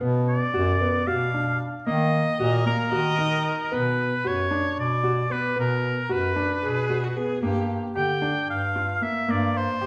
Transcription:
0.01 B2 B3
0.28 D5
0.54 F#2 F#4
0.81 B3
1.07 B2 F#4 F5
1.34 D4
1.87 D#3 A#3 D#5
2.39 A#2 F#4 A#4
2.66 A#3 A#4
2.92 D#3 F#4 D#5
3.18 D#4
3.72 B2 B3 B4
4.25 F#2 F#4 C#5
4.51 D4
4.77 B2 D5
5.04 F#4
5.30 B3 B4
5.56 B2 B3 A#4
6.09 F#2 F#4 B4
6.36 D4
6.63 B2 G#4
6.90 F#4
7.03 F#4
7.16 B3 G#4
7.43 G2 A#3 G4
7.96 D3 G4 G5
8.22 D4
8.49 G2 F5
8.76 F4
9.01 A#3 E5
9.28 G2 A#3 D5
9.57 C5
9.81 D3 G4

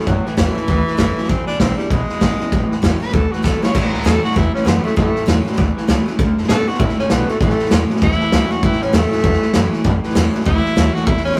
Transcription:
0.00 snare
0.06 F#2 A2 E3 F#3, kick, snare
0.25 A2 E3, snare
0.37 E2 A2 E3 F#3 A3 C#4 E4, kick, snare, hi-hat pedal
0.55 A2 F#3 C#4 E4, snare
0.67 D2 E2 A2 E3, kick, snare
0.86 A2 E3, snare
0.97 F#1 A2 E3 F#3 A3 C#4 E4, kick, snare, hi-hat pedal
1.16 A2 F#3 C#4 E4, muted upright bass stroke, snare
1.23 snare
1.29 E2 B2 C4, kick, snare
1.46 G#1 E2 B2 D4, snare
1.59 B1 E2 C#3 D3 G#3 B3 C4 E4, kick, snare, hi-hat pedal
1.77 E2 C#3 G3, snare
1.90 B1 E2 B2 G#3, kick, snare
2.09 E2 B2, snare
2.21 G#1 E2 C#3 D3 G#3 B3 E4, kick, snare, hi-hat pedal
2.39 E2 C#3 B3 E4, snare
2.52 A1 A2 E3, kick, snare
2.71 A2 E3, snare
2.82 E2 A2 E3 F#3 A3 C#4 E4, kick, snare, hi-hat pedal
3.00 A2 F#3 C#4 E4 B4, snare
3.08 snare
3.13 D2 E2 A2 E3 A4, kick, snare
3.32 A2 E3 F#4, snare
3.42 C#2 A2 E3 F#3 A3 C#4 E4 A4, kick, snare, hi-hat pedal
3.62 A2 F#3 C#4 E4 C#5, muted upright bass stroke, snare
3.74 A2 E3, kick, snare, crash
3.93 C#2 A2 E3, snare
4.00 E3, snare
4.05 E2 A2 F#3 A3 C#4 E4 A4, snare, hi-hat pedal
4.23 A2 F#3 C#4 E4 F#4, snare
4.31 snare
4.36 E2 A2 E3 E4, kick, snare
4.54 A2 E3 C#4, muted upright bass stroke, snare
4.65 F#2 A2 E3 F#3 A3 B3 C#4 E4, snare, hi-hat pedal
4.84 A2 F#3 A3 C#4 E4, muted upright bass stroke, snare
4.96 F#2 A2 E3 A3, kick, snare
5.14 A2 E3, snare
5.26 E2 A2 E3 F#3 A3 C#4 E4, snare, hi-hat pedal
5.45 A2 F#3 C#4 E4, snare
5.52 snare
5.57 D2 E2 A2 E3, kick, snare
5.76 A2 E3, snare
5.87 C#2 A2 E3 F#3 A3 C#4 E4, snare, hi-hat pedal
6.06 A2 F#3 C#4 E4, snare
6.18 D2 D3 A3, kick, snare
6.37 F#2 D3 A3, snare
6.43 snare
6.48 A2 D3 A3 B3 D4 F#4 A4, snare, hi-hat pedal
6.67 D3 B3 D4 F#4, muted upright bass stroke, snare
6.74 snare
6.79 A2 D3 A3 E4, kick, snare
6.89 snare
6.98 D3 A3 C#4, muted upright bass stroke, snare
7.10 B1 D3 A3 B3 D4 F#4, snare, hi-hat pedal
7.28 D3 A3 B3 D4 F#4, snare
7.40 A1 A2 E3 A3, kick, snare
7.49 snare
7.59 A2 E3, muted upright bass stroke, snare
7.65 snare
7.71 E2 A2 E3 F#3 A3 C#4 E4, snare, hi-hat pedal
7.89 A2 F#3 C#4 E4, snare
7.96 snare
8.02 D2 E2 A2 E3 E4, kick, snare
8.11 snare
8.20 A2 E3, snare
8.32 C#2 A2 E3 F#3 A3 C#4 E4, snare, hi-hat pedal
8.51 A2 F#3 C#4 E4 F#4, snare
8.63 A2 E3 E4, kick, snare
8.72 snare
8.81 C#2 A2 E3 C#4, snare
8.93 E2 A2 E3 F#3 A3 C#4 E4, snare, hi-hat pedal
9.11 A2 F#3 C#4 E4, snare
9.18 snare
9.23 E2 A2 E3, kick, snare
9.33 snare
9.42 A2 E3, snare
9.53 F#2 A2 E3 F#3 A3 C#4 E4, snare, hi-hat pedal
9.72 A2 F#3, muted upright bass stroke, snare
9.84 F#2 A2 E3, kick, snare
10.03 A2 E3, snare
10.09 snare
10.15 E2 A2 E3 F#3 A3 C#4 E4, snare, hi-hat pedal
10.33 A2 F#3 C#4 E4, muted upright bass stroke, snare
10.40 snare
10.45 D2 E2 A2 E3 E4, kick, snare
10.56 snare
10.64 A2 E3, muted upright bass stroke, snare
10.76 D#2 A2 E3 F#3 A3 C#4 E4, snare, hi-hat pedal
10.93 A2 F#3 F#4, snare
11.06 E1 E2 B2 E4, kick, snare
11.16 snare
11.25 G#1 E2 B2 C#4, snare
11.32 snare

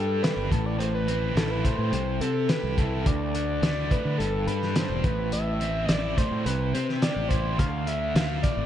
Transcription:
Already playing: G2 G3 A4
0.23 D4 B4, snare, closed hi-hat
0.37 G1
0.51 A1 A2 A4, kick, closed hi-hat
0.66 D5
0.78 A2 C5, closed hi-hat
0.94 B4
1.07 C4, closed hi-hat
1.36 A1 E4 A4, snare, closed hi-hat
1.51 B4
1.64 A3 C5, kick, closed hi-hat
1.78 A2
1.93 C2 C3, closed hi-hat
2.21 C3 C4 A4, closed hi-hat
2.49 G4 B4, snare, closed hi-hat
2.63 C2
2.78 E4 A4, kick, closed hi-hat
3.06 D2 D5, kick, closed hi-hat
3.35 D3, closed hi-hat
3.62 D2 A3, snare, closed hi-hat
3.91 A2 B4, kick, closed hi-hat
4.05 D3
4.18 G1 G2 A4, closed hi-hat
4.47 G2 G3 B4, closed hi-hat
4.62 snare
4.76 D4 C5, snare, closed hi-hat
4.89 E1
5.04 A1 A2 B4, kick, closed hi-hat
5.32 A2 E5, closed hi-hat
5.60 C4, closed hi-hat
5.89 A1 E4 D5, snare, closed hi-hat
6.17 A3 C5, kick, closed hi-hat
6.31 A2
6.46 C2 C3 B4, closed hi-hat
6.74 C3 C4 C5, closed hi-hat
6.89 snare
7.02 G4 D5, snare, closed hi-hat
7.16 A1
7.29 E4 C5, kick, closed hi-hat
7.58 D2 F5, kick, closed hi-hat
7.87 D3 E5, closed hi-hat
8.15 D2 A3 F5, snare, closed hi-hat
8.43 A2 D5, kick, closed hi-hat
8.57 G#1

